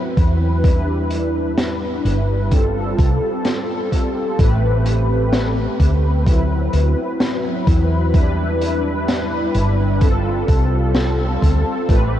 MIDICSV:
0, 0, Header, 1, 4, 480
1, 0, Start_track
1, 0, Tempo, 937500
1, 328, Time_signature, 4, 2, 24, 8
1, 6244, End_track
2, 0, Start_track
2, 0, Title_t, "Analog polysynth"
2, 0, Program_c, 0, 90
2, 0, Control_c, 0, 64, 127
2, 0, Note_on_c, 0, 54, 76
2, 0, Note_on_c, 0, 60, 72
2, 0, Note_on_c, 0, 64, 71
2, 0, Note_on_c, 0, 71, 84
2, 276, Note_off_c, 0, 54, 0
2, 279, Note_off_c, 0, 60, 0
2, 281, Note_off_c, 0, 64, 0
2, 284, Note_off_c, 0, 71, 0
2, 319, Note_on_c, 0, 55, 79
2, 324, Note_on_c, 0, 62, 72
2, 330, Note_on_c, 0, 64, 74
2, 334, Control_c, 0, 64, 0
2, 335, Note_on_c, 0, 71, 88
2, 424, Control_c, 0, 64, 127
2, 1237, Note_off_c, 0, 55, 0
2, 1239, Note_off_c, 0, 62, 0
2, 1242, Note_off_c, 0, 64, 0
2, 1244, Note_off_c, 0, 71, 0
2, 1280, Note_on_c, 0, 55, 77
2, 1285, Note_on_c, 0, 60, 70
2, 1290, Note_on_c, 0, 65, 70
2, 1295, Note_on_c, 0, 69, 88
2, 1296, Control_c, 0, 64, 0
2, 1373, Control_c, 0, 64, 127
2, 2197, Note_off_c, 0, 55, 0
2, 2199, Note_off_c, 0, 60, 0
2, 2202, Note_off_c, 0, 65, 0
2, 2205, Note_off_c, 0, 69, 0
2, 2241, Note_on_c, 0, 57, 80
2, 2246, Note_on_c, 0, 60, 72
2, 2251, Note_on_c, 0, 67, 72
2, 2255, Control_c, 0, 64, 0
2, 2257, Note_on_c, 0, 71, 88
2, 2351, Control_c, 0, 64, 127
2, 3157, Note_off_c, 0, 57, 0
2, 3160, Note_off_c, 0, 60, 0
2, 3162, Note_off_c, 0, 67, 0
2, 3165, Note_off_c, 0, 71, 0
2, 3200, Note_on_c, 0, 54, 78
2, 3205, Note_on_c, 0, 60, 69
2, 3210, Note_on_c, 0, 64, 70
2, 3214, Control_c, 0, 64, 0
2, 3216, Note_on_c, 0, 71, 84
2, 3297, Control_c, 0, 64, 127
2, 4117, Note_off_c, 0, 54, 0
2, 4120, Note_off_c, 0, 60, 0
2, 4122, Note_off_c, 0, 64, 0
2, 4125, Note_off_c, 0, 71, 0
2, 4161, Note_on_c, 0, 55, 79
2, 4166, Note_on_c, 0, 62, 72
2, 4171, Note_on_c, 0, 64, 73
2, 4175, Control_c, 0, 64, 0
2, 4176, Note_on_c, 0, 71, 91
2, 4264, Control_c, 0, 64, 127
2, 5077, Note_off_c, 0, 55, 0
2, 5080, Note_off_c, 0, 62, 0
2, 5082, Note_off_c, 0, 64, 0
2, 5085, Note_off_c, 0, 71, 0
2, 5120, Note_on_c, 0, 55, 75
2, 5125, Note_on_c, 0, 60, 69
2, 5130, Note_on_c, 0, 65, 70
2, 5135, Control_c, 0, 64, 0
2, 5135, Note_on_c, 0, 69, 87
2, 5221, Control_c, 0, 64, 127
2, 6037, Note_off_c, 0, 55, 0
2, 6039, Note_off_c, 0, 60, 0
2, 6042, Note_off_c, 0, 65, 0
2, 6045, Note_off_c, 0, 69, 0
2, 6080, Note_on_c, 0, 57, 77
2, 6085, Note_on_c, 0, 60, 73
2, 6090, Note_on_c, 0, 67, 74
2, 6095, Note_on_c, 0, 71, 88
2, 6096, Control_c, 0, 64, 0
2, 6172, Control_c, 0, 64, 127
2, 6244, Note_off_c, 0, 57, 0
2, 6244, Note_off_c, 0, 60, 0
2, 6244, Note_off_c, 0, 67, 0
2, 6244, Note_off_c, 0, 71, 0
2, 6244, End_track
3, 0, Start_track
3, 0, Title_t, "Fretless electric bass"
3, 0, Program_c, 1, 35
3, 88, Note_on_c, 1, 40, 85
3, 1016, Note_off_c, 1, 40, 0
3, 1049, Note_on_c, 1, 31, 94
3, 1496, Note_off_c, 1, 31, 0
3, 1528, Note_on_c, 1, 36, 96
3, 1629, Note_off_c, 1, 36, 0
3, 2248, Note_on_c, 1, 33, 90
3, 2897, Note_off_c, 1, 33, 0
3, 2968, Note_on_c, 1, 38, 95
3, 3416, Note_off_c, 1, 38, 0
3, 3448, Note_on_c, 1, 38, 88
3, 3549, Note_off_c, 1, 38, 0
3, 3928, Note_on_c, 1, 40, 89
3, 4856, Note_off_c, 1, 40, 0
3, 4889, Note_on_c, 1, 31, 92
3, 5336, Note_off_c, 1, 31, 0
3, 5367, Note_on_c, 1, 36, 93
3, 5816, Note_off_c, 1, 36, 0
3, 5847, Note_on_c, 1, 38, 78
3, 5949, Note_off_c, 1, 38, 0
3, 6087, Note_on_c, 1, 33, 90
3, 6244, Note_off_c, 1, 33, 0
3, 6244, End_track
4, 0, Start_track
4, 0, Title_t, "Drums"
4, 88, Note_on_c, 9, 36, 101
4, 88, Note_on_c, 9, 42, 68
4, 139, Note_off_c, 9, 36, 0
4, 139, Note_off_c, 9, 42, 0
4, 328, Note_on_c, 9, 36, 120
4, 330, Note_on_c, 9, 42, 80
4, 379, Note_off_c, 9, 36, 0
4, 382, Note_off_c, 9, 42, 0
4, 566, Note_on_c, 9, 42, 71
4, 617, Note_off_c, 9, 42, 0
4, 807, Note_on_c, 9, 38, 114
4, 808, Note_on_c, 9, 42, 93
4, 858, Note_off_c, 9, 38, 0
4, 860, Note_off_c, 9, 42, 0
4, 1052, Note_on_c, 9, 42, 72
4, 1103, Note_off_c, 9, 42, 0
4, 1287, Note_on_c, 9, 42, 87
4, 1288, Note_on_c, 9, 36, 112
4, 1338, Note_off_c, 9, 42, 0
4, 1340, Note_off_c, 9, 36, 0
4, 1528, Note_on_c, 9, 36, 105
4, 1533, Note_on_c, 9, 42, 80
4, 1579, Note_off_c, 9, 36, 0
4, 1585, Note_off_c, 9, 42, 0
4, 1765, Note_on_c, 9, 42, 95
4, 1767, Note_on_c, 9, 38, 105
4, 1816, Note_off_c, 9, 42, 0
4, 1818, Note_off_c, 9, 38, 0
4, 2008, Note_on_c, 9, 36, 59
4, 2010, Note_on_c, 9, 42, 80
4, 2059, Note_off_c, 9, 36, 0
4, 2061, Note_off_c, 9, 42, 0
4, 2248, Note_on_c, 9, 36, 121
4, 2249, Note_on_c, 9, 42, 87
4, 2299, Note_off_c, 9, 36, 0
4, 2300, Note_off_c, 9, 42, 0
4, 2487, Note_on_c, 9, 42, 82
4, 2538, Note_off_c, 9, 42, 0
4, 2728, Note_on_c, 9, 38, 127
4, 2730, Note_on_c, 9, 42, 87
4, 2779, Note_off_c, 9, 38, 0
4, 2781, Note_off_c, 9, 42, 0
4, 2968, Note_on_c, 9, 36, 62
4, 2969, Note_on_c, 9, 42, 77
4, 3019, Note_off_c, 9, 36, 0
4, 3020, Note_off_c, 9, 42, 0
4, 3208, Note_on_c, 9, 36, 121
4, 3212, Note_on_c, 9, 42, 86
4, 3259, Note_off_c, 9, 36, 0
4, 3263, Note_off_c, 9, 42, 0
4, 3446, Note_on_c, 9, 42, 76
4, 3497, Note_off_c, 9, 42, 0
4, 3688, Note_on_c, 9, 38, 123
4, 3689, Note_on_c, 9, 42, 91
4, 3739, Note_off_c, 9, 38, 0
4, 3740, Note_off_c, 9, 42, 0
4, 3928, Note_on_c, 9, 36, 105
4, 3929, Note_on_c, 9, 42, 76
4, 3979, Note_off_c, 9, 36, 0
4, 3980, Note_off_c, 9, 42, 0
4, 4168, Note_on_c, 9, 36, 122
4, 4169, Note_on_c, 9, 42, 73
4, 4219, Note_off_c, 9, 36, 0
4, 4220, Note_off_c, 9, 42, 0
4, 4411, Note_on_c, 9, 42, 79
4, 4462, Note_off_c, 9, 42, 0
4, 4650, Note_on_c, 9, 42, 89
4, 4651, Note_on_c, 9, 38, 110
4, 4701, Note_off_c, 9, 42, 0
4, 4703, Note_off_c, 9, 38, 0
4, 4887, Note_on_c, 9, 42, 73
4, 4938, Note_off_c, 9, 42, 0
4, 5126, Note_on_c, 9, 42, 85
4, 5127, Note_on_c, 9, 36, 116
4, 5177, Note_off_c, 9, 42, 0
4, 5179, Note_off_c, 9, 36, 0
4, 5367, Note_on_c, 9, 36, 108
4, 5369, Note_on_c, 9, 42, 71
4, 5418, Note_off_c, 9, 36, 0
4, 5420, Note_off_c, 9, 42, 0
4, 5604, Note_on_c, 9, 38, 120
4, 5607, Note_on_c, 9, 42, 75
4, 5655, Note_off_c, 9, 38, 0
4, 5658, Note_off_c, 9, 42, 0
4, 5847, Note_on_c, 9, 36, 63
4, 5852, Note_on_c, 9, 42, 68
4, 5898, Note_off_c, 9, 36, 0
4, 5903, Note_off_c, 9, 42, 0
4, 6087, Note_on_c, 9, 36, 113
4, 6090, Note_on_c, 9, 42, 80
4, 6138, Note_off_c, 9, 36, 0
4, 6142, Note_off_c, 9, 42, 0
4, 6244, End_track
0, 0, End_of_file